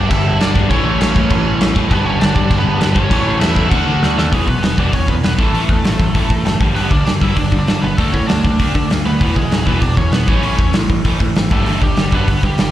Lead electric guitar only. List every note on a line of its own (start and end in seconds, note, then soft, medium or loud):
0.00 0.11 D5 loud
0.09 0.38 E4 medium
0.09 0.40 E5 loud
0.41 0.69 D4 medium
0.41 0.69 D5 loud
0.70 0.85 C#4 medium
0.70 0.84 C#5 medium
0.85 1.72 C#4 medium
0.85 1.72 C#5 loud
1.90 2.05 B3 medium
1.90 2.05 B4 medium
2.05 2.20 C#4 medium
2.05 2.19 C#5 medium
2.20 2.34 D4 medium
2.20 2.34 D5 medium
2.35 2.57 D4 medium
2.35 2.58 D5 loud
2.58 2.80 B3 medium
2.58 2.79 B4 medium
2.80 2.95 B3 medium
2.80 2.93 B4 medium
2.94 3.37 C#4 medium
2.94 3.37 C#5 medium
3.40 3.69 E4 medium
3.40 3.69 E5 loud
3.70 4.14 F#4 medium
3.70 4.13 F#5 medium
4.18 4.32 A3 medium
4.18 4.34 A4 medium
4.34 4.47 G#3 medium
4.34 4.47 G#4 medium
4.48 4.76 B3 medium
4.48 4.79 B4 medium
4.79 4.93 D4 medium
4.79 4.95 D5 medium
4.94 5.08 C#4 medium
4.94 5.10 C#5 medium
5.09 5.14 B3 medium
5.09 5.15 B4 medium
5.25 5.38 B3 medium
5.25 5.40 B4 medium
5.39 6.57 A3 medium
5.39 6.57 A4 medium
6.75 6.90 B3 medium
6.75 6.91 B4 loud
6.90 7.03 D4 medium
6.90 7.04 D5 medium
7.05 7.10 D4 medium
7.05 7.10 D5 loud
7.21 7.36 E4 medium
7.21 7.36 E5 loud
7.36 7.58 D4 medium
7.36 7.58 D5 medium
7.59 7.81 D4 medium
7.59 7.81 D5 medium
7.82 7.97 B3 medium
7.82 7.97 B4 medium
7.97 8.13 A3 medium
7.97 8.14 A4 medium
8.12 8.27 C#4 medium
8.12 8.26 C#5 loud
8.26 8.86 D4 medium
8.26 8.89 D5 loud
9.06 9.35 B3 medium
9.06 9.38 B4 medium
9.35 9.65 G#3 medium
9.35 9.68 G#4 medium
9.66 9.81 B3 medium
9.66 9.81 B4 medium
9.81 9.96 D4 medium
9.81 9.97 D5 medium
9.97 10.12 C#4 medium
9.97 10.12 C#5 medium
10.12 10.27 B3 medium
10.12 10.29 B4 medium
10.29 10.72 C#4 medium
10.29 10.75 C#5 medium
11.52 11.81 A3 medium
11.52 11.83 A4 medium
11.83 12.11 G3 medium
11.83 12.14 G4 loud
12.14 12.42 B3 medium
12.14 12.45 B4 loud
12.45 12.59 G3 medium
12.45 12.60 G4 medium
12.60 12.71 G3 medium
12.60 12.71 G4 loud